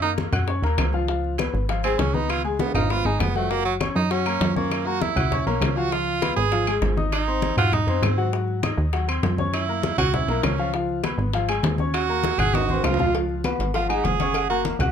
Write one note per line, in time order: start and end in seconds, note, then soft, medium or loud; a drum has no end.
0.00 0.27 F#2 medium
0.00 0.28 A#3 medium
0.00 0.12 D#4 medium
0.00 0.28 A#4 medium
0.00 0.28 A#5 medium
0.00 high conga soft
0.18 high bongo medium
0.18 high conga loud
0.18 high timbale medium
0.32 0.61 F#2 medium
0.32 0.45 F#4 medium
0.32 0.45 F#5 medium
0.32 0.46 F#6 medium
0.32 high bongo soft
0.32 high conga soft
0.32 low conga medium
0.32 high timbale loud
0.32 claves medium
0.48 0.60 C#4 medium
0.48 0.61 C#5 medium
0.48 0.61 C#6 medium
0.48 high bongo medium
0.48 high conga soft
0.62 0.77 D#2 medium
0.62 0.88 A#3 medium
0.62 0.89 A#4 medium
0.62 0.89 A#5 medium
0.62 high bongo soft
0.62 high conga soft
0.62 high timbale medium
0.78 1.48 C#2 medium
0.78 high bongo medium
0.78 low bongo medium
0.78 high conga medium
0.78 high timbale medium
0.78 low timbale medium
0.78 claves medium
0.93 1.06 F3 medium
0.93 1.06 F4 medium
0.93 1.06 F5 medium
0.93 high bongo soft
0.93 high conga soft
1.08 1.33 F3 medium
1.08 1.34 F4 medium
1.08 1.34 F5 medium
1.08 high bongo medium
1.08 high conga soft
1.24 high conga soft
1.38 1.64 B3 medium
1.38 1.64 B4 medium
1.38 1.64 B5 medium
1.38 high bongo medium
1.38 high conga loud
1.38 high timbale loud
1.38 claves medium
1.54 1.96 G#1 medium
1.54 high bongo soft
1.54 high conga soft
1.69 1.82 F3 medium
1.69 1.82 F4 medium
1.69 1.82 F5 medium
1.69 high bongo medium
1.69 high conga soft
1.69 high timbale medium
1.84 2.09 G#3 medium
1.84 2.01 C4 medium
1.84 2.09 G#4 medium
1.84 2.09 G#5 medium
1.84 high bongo soft
1.84 high conga soft
1.84 high timbale medium
1.84 claves medium
1.99 2.69 C#2 medium
1.99 2.16 C#4 medium
1.99 high bongo medium
1.99 low bongo medium
1.99 high conga medium
1.99 high timbale medium
2.14 2.39 B3 medium
2.14 2.31 D#4 medium
2.14 2.39 B4 medium
2.14 2.40 B5 medium
2.14 high bongo soft
2.14 high conga medium
2.29 2.44 F4 loud
2.29 high bongo medium
2.29 high conga soft
2.29 high timbale loud
2.29 claves medium
2.44 2.60 G#3 medium
2.44 2.69 G#3 medium
2.44 2.70 G#4 medium
2.44 2.70 G#5 medium
2.44 high conga soft
2.59 2.74 B3 medium
2.59 high bongo medium
2.59 high conga medium
2.59 high timbale loud
2.74 3.03 G#1 loud
2.74 2.92 D#4 medium
2.74 2.88 F4 medium
2.74 2.88 F5 medium
2.74 2.88 F6 medium
2.74 high bongo soft
2.74 high conga soft
2.74 low conga medium
2.74 high timbale loud
2.74 claves medium
2.90 3.03 B3 medium
2.90 3.07 F4 loud
2.90 3.03 B4 medium
2.90 3.03 B5 medium
2.90 high bongo medium
2.90 low timbale medium
3.05 3.19 G#1 medium
3.05 3.30 G#3 medium
3.05 3.22 D#4 medium
3.05 3.30 G#4 medium
3.05 3.30 G#5 medium
3.05 high bongo soft
3.05 high conga soft
3.20 3.90 F#1 medium
3.20 3.37 B3 medium
3.20 high bongo medium
3.20 low bongo medium
3.20 high conga medium
3.20 low timbale medium
3.20 claves medium
3.35 3.48 F#3 medium
3.35 3.52 A3 medium
3.35 3.48 F#4 medium
3.35 3.48 F#5 medium
3.35 high bongo soft
3.35 high conga soft
3.35 low timbale medium
3.50 3.75 F#3 medium
3.50 3.65 A#3 loud
3.50 3.75 F#4 medium
3.50 3.75 F#5 medium
3.50 high bongo medium
3.50 high conga soft
3.65 3.74 F#3 medium
3.65 high conga soft
3.81 4.05 C#4 medium
3.81 4.05 C#5 medium
3.81 4.06 C#6 medium
3.81 high bongo medium
3.81 high conga medium
3.81 high timbale medium
3.81 claves medium
3.96 4.38 F#2 loud
3.96 4.13 D#4 medium
3.96 high bongo soft
3.96 high conga soft
4.11 4.23 F#3 medium
4.11 4.56 C#4 medium
4.11 4.23 F#4 medium
4.11 4.23 F#5 medium
4.11 high bongo medium
4.11 high conga soft
4.11 high timbale medium
4.26 4.51 A#3 medium
4.26 4.51 A#4 medium
4.26 4.51 A#5 medium
4.26 high bongo soft
4.26 high conga soft
4.26 high timbale medium
4.26 claves medium
4.41 5.11 F#2 loud
4.41 high bongo medium
4.41 low bongo medium
4.41 high conga medium
4.41 high timbale medium
4.41 low timbale medium
4.56 4.88 A#3 medium
4.56 4.81 C#4 medium
4.56 4.81 C#5 medium
4.56 4.81 C#6 medium
4.56 high bongo soft
4.56 high conga medium
4.71 high bongo medium
4.71 high conga soft
4.71 high timbale loud
4.71 claves medium
4.86 5.11 A#3 medium
4.86 5.03 F#4 loud
4.86 5.11 A#4 medium
4.86 5.11 A#5 medium
4.86 high conga soft
5.01 5.47 E4 medium
5.01 high bongo medium
5.01 high conga loud
5.01 high timbale medium
5.16 5.44 C#2 loud
5.16 5.29 F#4 medium
5.16 5.29 F#5 medium
5.16 5.29 F#6 medium
5.16 high bongo soft
5.16 high conga soft
5.16 low conga medium
5.16 high timbale medium
5.16 claves medium
5.31 5.44 C#4 medium
5.31 5.44 C#5 medium
5.31 5.44 C#6 medium
5.31 high bongo medium
5.31 high conga soft
5.31 low conga medium
5.46 5.60 B1 medium
5.46 5.71 A#3 medium
5.46 5.78 C#4 medium
5.46 5.71 A#4 medium
5.46 5.71 A#5 medium
5.46 high bongo soft
5.46 high conga soft
5.46 high timbale medium
5.61 6.31 C#2 medium
5.61 high bongo medium
5.61 low bongo medium
5.61 high conga medium
5.61 high timbale medium
5.61 low timbale medium
5.61 claves medium
5.77 5.89 F3 medium
5.77 5.89 F4 medium
5.77 5.93 F#4 loud
5.77 5.89 F5 medium
5.77 high bongo soft
5.77 high conga soft
5.92 6.17 F3 medium
5.92 6.36 F4 loud
5.92 6.17 F4 medium
5.92 6.17 F5 medium
5.92 high bongo medium
5.92 high conga soft
6.07 high conga soft
6.22 6.47 B3 medium
6.22 6.47 B4 medium
6.22 6.47 B5 medium
6.22 high bongo medium
6.22 high conga loud
6.22 high timbale medium
6.22 claves medium
6.36 6.79 G#1 loud
6.36 6.79 G#4 loud
6.36 high bongo soft
6.36 high conga soft
6.52 6.64 F3 medium
6.52 6.64 F4 medium
6.52 6.65 F5 medium
6.52 high bongo medium
6.52 high conga soft
6.52 high timbale medium
6.67 6.92 G#3 medium
6.67 6.92 G#4 medium
6.67 6.93 G#5 medium
6.67 high bongo soft
6.67 high conga soft
6.67 high timbale loud
6.67 claves medium
6.82 7.52 G#1 medium
6.82 high bongo medium
6.82 low bongo medium
6.82 high conga medium
6.82 high timbale medium
6.82 low timbale medium
6.97 7.22 D#4 medium
6.97 7.22 D#5 medium
6.97 7.22 D#6 medium
6.97 high bongo soft
6.97 high conga medium
7.12 7.55 D#4 medium
7.12 high bongo medium
7.12 high conga soft
7.12 high timbale medium
7.12 claves medium
7.28 7.52 C4 medium
7.28 7.52 C5 medium
7.28 7.52 C6 medium
7.28 high conga soft
7.42 high bongo medium
7.42 high conga loud
7.42 high timbale medium
7.57 7.85 G#2 loud
7.57 7.75 F4 loud
7.57 7.70 F#4 medium
7.57 7.70 F#5 medium
7.57 7.70 F#6 medium
7.57 high bongo soft
7.57 high conga soft
7.57 low conga medium
7.57 high timbale medium
7.57 claves medium
7.72 7.85 D#4 medium
7.72 8.04 D#4 medium
7.72 7.85 D#5 medium
7.72 7.86 D#6 medium
7.72 high bongo medium
7.72 high conga soft
7.72 low conga medium
7.87 8.01 F#2 medium
7.87 8.12 C4 medium
7.87 8.13 C5 medium
7.87 8.13 C6 medium
7.87 high bongo soft
7.87 high conga soft
7.87 high timbale medium
8.02 8.72 G#2 loud
8.02 8.33 C4 medium
8.02 high bongo medium
8.02 low bongo medium
8.02 high conga medium
8.02 high timbale medium
8.02 low timbale medium
8.02 claves medium
8.18 8.30 F#3 medium
8.18 8.30 F#4 medium
8.18 8.30 F#5 medium
8.18 high bongo soft
8.18 high conga soft
8.33 8.57 F#3 medium
8.33 8.58 F#4 medium
8.33 8.58 F#5 medium
8.33 high bongo medium
8.33 high conga soft
8.48 high conga soft
8.63 8.88 D#4 medium
8.63 8.88 D#5 medium
8.63 8.88 D#6 medium
8.63 high bongo medium
8.63 high conga loud
8.63 high timbale medium
8.63 claves medium
8.78 9.20 D#2 loud
8.78 high bongo soft
8.78 high conga soft
8.93 9.05 F#3 medium
8.93 9.05 F#4 medium
8.93 9.06 F#5 medium
8.93 high bongo medium
8.93 high conga soft
8.93 high timbale medium
9.08 9.33 C4 medium
9.08 9.33 C5 medium
9.08 9.33 C6 medium
9.08 high bongo soft
9.08 high conga soft
9.08 high timbale loud
9.08 claves medium
9.23 9.93 F#2 loud
9.23 high bongo medium
9.23 low bongo medium
9.23 high conga medium
9.23 high timbale medium
9.23 low timbale medium
9.38 9.63 C#4 medium
9.38 9.63 C#5 medium
9.38 9.63 C#6 medium
9.38 high bongo soft
9.38 high conga medium
9.53 9.96 E4 medium
9.53 high bongo medium
9.53 high conga soft
9.53 high timbale loud
9.53 claves medium
9.69 9.93 A#3 medium
9.69 9.93 A#4 medium
9.69 9.94 A#5 medium
9.69 high conga soft
9.83 high bongo medium
9.83 high conga loud
9.83 high timbale medium
9.98 10.26 C#2 loud
9.98 10.15 F#4 loud
9.98 10.11 F#4 medium
9.98 10.11 F#5 medium
9.98 10.12 F#6 medium
9.98 high bongo soft
9.98 high conga soft
9.98 low conga medium
9.98 high timbale loud
9.98 claves medium
10.14 10.26 C#4 medium
10.14 10.45 E4 loud
10.14 10.26 C#5 medium
10.14 10.26 C#6 medium
10.14 high bongo medium
10.14 high conga soft
10.14 low conga medium
10.28 10.42 B1 medium
10.28 10.54 A#3 medium
10.28 10.54 A#4 medium
10.28 10.54 A#5 medium
10.28 high bongo soft
10.28 high conga soft
10.28 high timbale medium
10.43 11.13 C#2 medium
10.43 10.73 C#4 medium
10.43 high bongo medium
10.43 low bongo loud
10.43 high conga medium
10.43 high timbale medium
10.43 low timbale medium
10.43 claves medium
10.58 10.71 F3 loud
10.58 10.71 F4 medium
10.58 10.71 F5 medium
10.58 high bongo soft
10.58 high conga soft
10.74 10.99 F3 medium
10.74 10.99 F4 medium
10.74 10.99 F5 medium
10.74 high bongo medium
10.74 high conga soft
10.89 high conga soft
11.04 11.29 B3 medium
11.04 11.29 B4 medium
11.04 11.29 B5 medium
11.04 high bongo medium
11.04 high conga medium
11.04 high timbale loud
11.04 claves medium
11.18 11.60 G#1 loud
11.18 high bongo soft
11.18 high conga soft
11.33 11.46 F3 medium
11.33 11.47 F4 medium
11.33 11.47 F5 medium
11.33 high bongo medium
11.33 high conga soft
11.33 high timbale medium
11.49 11.74 G#3 medium
11.49 11.74 G#4 medium
11.49 11.74 G#5 medium
11.49 high bongo soft
11.49 high conga soft
11.49 high timbale loud
11.49 claves medium
11.63 12.33 D#2 medium
11.63 high bongo medium
11.63 low bongo loud
11.63 high conga medium
11.63 high timbale medium
11.63 low timbale medium
11.78 12.04 C#4 medium
11.78 12.04 C#5 medium
11.78 12.04 C#6 medium
11.78 high bongo soft
11.78 high conga medium
11.93 12.40 F#4 loud
11.93 high bongo medium
11.93 high conga soft
11.93 high timbale medium
11.93 claves medium
12.09 12.34 A#3 medium
12.09 12.34 A#4 medium
12.09 12.34 A#5 medium
12.09 high conga soft
12.24 high bongo medium
12.24 high conga medium
12.24 high timbale medium
12.38 12.81 G#1 loud
12.38 12.52 F#4 medium
12.38 12.56 G#4 loud
12.38 12.52 F#5 medium
12.38 12.52 F#6 medium
12.38 high bongo soft
12.38 high conga soft
12.38 low conga medium
12.38 high timbale loud
12.38 claves medium
12.54 12.66 D#4 medium
12.54 12.86 F#4 loud
12.54 12.67 D#5 medium
12.54 12.67 D#6 medium
12.54 high bongo medium
12.54 high conga medium
12.54 high timbale medium
12.69 12.94 C4 medium
12.69 12.94 C5 medium
12.69 12.94 C6 medium
12.69 high bongo soft
12.69 high conga loud
12.74 high timbale medium
12.84 13.54 C#2 loud
12.84 13.15 F4 medium
12.84 high bongo medium
12.84 low bongo medium
12.84 low conga medium
12.84 low timbale medium
12.84 claves medium
12.94 low timbale loud
12.99 13.12 F3 medium
12.99 13.12 F4 medium
12.99 13.12 F5 loud
12.99 high bongo soft
12.99 low conga medium
13.04 low timbale medium
13.14 13.39 F3 medium
13.14 13.39 F4 medium
13.14 13.40 F5 medium
13.14 cowbell loud
13.14 high conga soft
13.29 high conga soft
13.44 13.69 B3 medium
13.44 13.69 B4 medium
13.44 13.69 B5 medium
13.44 cowbell medium
13.44 high conga loud
13.44 low agogo loud
13.44 claves medium
13.59 14.01 G#1 medium
13.59 cowbell medium
13.59 high conga soft
13.74 13.87 F3 medium
13.74 13.89 F4 medium
13.74 13.87 F4 medium
13.74 13.87 F5 medium
13.74 cowbell medium
13.74 high conga soft
13.74 low agogo medium
13.89 14.14 G#3 medium
13.89 14.06 D#4 medium
13.89 14.14 G#4 medium
13.89 14.14 G#5 medium
13.89 high conga soft
13.89 low agogo loud
13.89 claves medium
14.04 14.74 F#1 loud
14.04 14.49 G#4 loud
14.04 cowbell medium
14.04 high conga medium
14.04 low timbale medium
14.20 14.44 C#4 medium
14.20 14.45 C#5 medium
14.20 14.45 C#6 medium
14.20 cowbell medium
14.20 high conga medium
14.20 low agogo medium
14.34 cowbell loud
14.34 high conga soft
14.34 low agogo loud
14.34 claves medium
14.49 14.74 A#3 medium
14.49 14.64 F#4 medium
14.49 14.75 A#4 medium
14.49 14.75 A#5 medium
14.49 high conga soft
14.65 cowbell medium
14.65 high conga loud
14.65 low agogo medium
14.79 14.92 C#2 loud
14.79 14.92 F#4 medium
14.79 14.92 F#5 medium
14.79 14.92 F#6 medium
14.79 cowbell medium
14.79 high conga soft
14.79 low conga medium
14.79 low agogo loud
14.79 claves medium